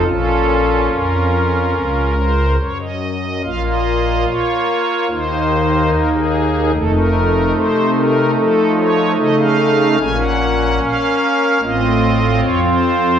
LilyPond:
<<
  \new Staff \with { instrumentName = "Pipe organ" } { \time 4/4 \key bes \minor \tempo 4 = 73 << { a'4 bes'4. c''8 des''16 ees''8. | f''16 ees''8. des''4 c''4 bes'16 aes'8. | a'16 bes'8. c''8 bes'8 a'8 des''8 ees''16 f''8. | aes''16 ges''8. f''4 ees''4 des''16 c''8. | } \\ { <des' f'>2~ <des' f'>8 r4. | <bes f'>2 <bes ees'>2 | <a ees'>1 | <bes des'>2 <c' f'>2 | } >> }
  \new Staff \with { instrumentName = "Pipe organ" } { \clef bass \time 4/4 \key bes \minor <bes,, bes,>4 f,4 des,4 ges,4 | <bes,, bes,>4 bes4 <ees, ees>4 ees,4 | <f,, f,>4 c4 f4 des4 | <bes,, bes,>4 bes4 <a,, a,>4 f,4 | }
>>